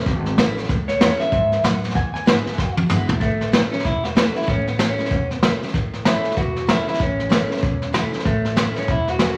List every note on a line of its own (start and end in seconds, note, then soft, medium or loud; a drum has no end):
0.00 snare soft
0.06 0.37 G#1 loud
0.06 0.67 E2 medium
0.06 kick loud
0.06 snare soft
0.25 snare soft
0.37 0.68 A1 medium
0.37 0.56 E3 medium
0.37 0.56 A3 medium
0.37 0.57 C#4 loud
0.37 0.56 E4 medium
0.37 snare loud
0.37 hi-hat pedal medium
0.57 0.69 C#4 soft
0.57 0.69 E4 medium
0.57 snare soft
0.64 snare soft
0.69 1.00 C#2 medium
0.69 1.30 A2 medium
0.69 kick loud
0.69 snare soft
0.88 1.21 C#5 medium
0.88 snare soft
1.00 1.18 E2 loud
1.00 1.19 E3 medium
1.00 1.19 A3 medium
1.00 1.19 C#4 medium
1.00 1.19 E4 loud
1.00 snare loud
1.00 hi-hat pedal medium
1.20 1.33 C#4 soft
1.20 1.32 E4 medium
1.20 1.65 E5 medium
1.20 muted upright bass stroke soft
1.20 snare soft
1.32 1.63 G#2 medium
1.32 kick loud
1.32 snare soft
1.52 snare soft
1.64 1.94 F#2 medium
1.64 1.94 A2 medium
1.64 1.96 F#5 loud
1.64 snare loud
1.64 hi-hat pedal medium
1.84 snare soft
1.90 snare soft
1.95 2.56 E2 medium
1.95 2.13 E2 medium
1.95 2.01 G#5 loud
1.95 kick loud
1.95 snare soft
2.14 2.73 G#5 loud
2.14 muted upright bass stroke soft
2.14 snare soft
2.26 2.45 G#2 loud
2.26 2.45 D3 medium
2.26 2.45 G#3 medium
2.26 2.45 B3 medium
2.26 2.44 E4 medium
2.26 snare loud
2.26 hi-hat pedal medium
2.46 2.58 B3 soft
2.46 2.58 E4 medium
2.46 muted upright bass stroke soft
2.46 snare soft
2.53 snare soft
2.58 2.89 F#2 medium
2.58 3.19 B2 medium
2.58 kick loud
2.58 snare medium
2.77 high tom medium
2.89 3.20 E2 medium
2.89 3.08 D3 medium
2.89 3.08 G#3 medium
2.89 3.08 B3 medium
2.89 3.07 E4 loud
2.89 hi-hat pedal medium
2.89 mid tom medium
3.08 3.21 B3 soft
3.08 3.21 E4 medium
3.08 floor tom medium
3.20 3.66 A1 medium
3.20 3.82 A2 medium
3.20 3.50 A3 loud
3.20 kick loud
3.20 snare soft
3.41 snare soft
3.52 3.71 E3 medium
3.52 3.71 A3 medium
3.52 3.71 C#4 medium
3.52 3.70 E4 medium
3.52 snare loud
3.52 hi-hat pedal medium
3.71 3.84 C#4 medium
3.71 3.85 C#4 soft
3.71 3.83 E4 medium
3.71 snare soft
3.79 snare soft
3.84 4.29 E1 medium
3.84 4.45 E2 medium
3.84 4.04 E4 loud
3.84 kick loud
3.84 snare soft
4.04 4.36 F#4 loud
4.04 snare soft
4.15 4.34 E3 medium
4.15 4.34 A3 medium
4.15 4.34 C#4 medium
4.15 4.33 E4 medium
4.15 snare loud
4.15 hi-hat pedal medium
4.34 4.47 C#4 soft
4.34 4.46 E4 medium
4.34 4.47 E4 loud
4.34 snare soft
4.42 snare soft
4.47 4.92 A1 medium
4.47 5.08 A2 medium
4.47 4.66 C#4 loud
4.47 kick loud
4.47 snare soft
4.67 4.79 B3 medium
4.67 snare soft
4.79 4.97 E3 medium
4.79 4.98 A3 medium
4.79 5.36 C#4 medium
4.79 4.98 C#4 medium
4.79 4.96 E4 medium
4.79 snare loud
4.79 hi-hat pedal medium
4.98 5.11 C#4 soft
4.98 5.10 E4 medium
4.98 snare soft
5.05 snare soft
5.11 5.55 E1 medium
5.11 5.71 E2 medium
5.11 kick loud
5.11 snare soft
5.31 snare soft
5.36 5.57 B3 medium
5.42 5.61 E3 medium
5.42 5.61 A3 medium
5.42 5.61 C#4 medium
5.42 5.60 E4 medium
5.42 snare loud
5.42 hi-hat pedal medium
5.61 5.74 C#4 soft
5.61 5.73 E4 medium
5.61 snare soft
5.68 snare soft
5.74 6.18 A1 medium
5.74 6.35 A2 medium
5.74 kick loud
5.74 snare soft
5.93 snare soft
6.05 6.36 E3 medium
6.05 6.36 A3 medium
6.05 6.36 C#4 medium
6.05 6.35 E4 medium
6.05 6.36 E4 medium
6.05 snare loud
6.05 hi-hat pedal medium
6.24 snare soft
6.31 snare soft
6.36 6.81 E1 medium
6.36 6.98 E2 medium
6.36 6.69 F#4 loud
6.36 kick loud
6.36 snare soft
6.56 snare soft
6.67 6.86 E3 medium
6.67 6.87 A3 medium
6.67 6.86 C#4 medium
6.67 6.85 E4 loud
6.67 6.87 E4 loud
6.67 snare loud
6.67 hi-hat pedal medium
6.86 6.99 C#4 soft
6.86 6.99 E4 medium
6.86 7.01 E4 loud
6.86 snare soft
6.94 snare soft
6.99 7.44 A1 medium
6.99 7.60 A2 medium
6.99 7.91 C#4 medium
6.99 kick loud
6.99 snare soft
7.19 snare soft
7.29 7.49 E3 medium
7.29 7.49 A3 loud
7.29 7.49 C#4 loud
7.29 7.48 E4 loud
7.29 snare loud
7.29 hi-hat pedal medium
7.50 7.63 C#4 soft
7.50 7.62 E4 medium
7.50 snare soft
7.57 snare soft
7.62 8.07 E1 medium
7.62 8.23 E2 medium
7.62 kick loud
7.62 snare soft
7.82 snare soft
7.93 8.12 E3 medium
7.93 8.12 A3 medium
7.93 8.12 C#4 medium
7.93 8.11 E4 medium
7.93 snare loud
7.93 hi-hat pedal medium
8.12 8.26 C#4 soft
8.12 8.25 E4 medium
8.12 snare soft
8.19 snare soft
8.25 8.70 A1 medium
8.25 8.86 A2 medium
8.25 8.55 A3 loud
8.25 kick loud
8.25 snare soft
8.45 snare soft
8.56 8.75 E3 medium
8.56 8.75 A3 medium
8.56 8.76 C#4 medium
8.56 8.74 E4 medium
8.56 snare loud
8.56 hi-hat pedal medium
8.75 8.89 C#4 soft
8.75 8.90 C#4 medium
8.75 8.88 E4 medium
8.75 snare soft
8.82 snare soft
8.88 9.32 E1 medium
8.88 9.37 E2 medium
8.88 9.09 E4 loud
8.88 kick loud
8.88 snare soft
9.07 9.37 F#4 loud
9.07 snare soft
9.19 9.37 E3 medium
9.19 9.37 A3 medium
9.19 9.37 C#4 medium
9.19 9.37 E4 medium
9.19 snare loud
9.19 hi-hat pedal medium